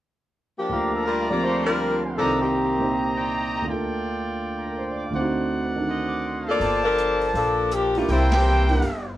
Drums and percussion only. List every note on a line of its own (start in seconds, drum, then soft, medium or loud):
6.61 open hi-hat soft
6.98 closed hi-hat soft
7.21 open hi-hat soft
7.35 open hi-hat soft
7.71 closed hi-hat soft
7.95 open hi-hat soft
8.09 open hi-hat soft
8.32 snare medium
8.32 ride medium
8.69 open hi-hat soft
8.82 open hi-hat soft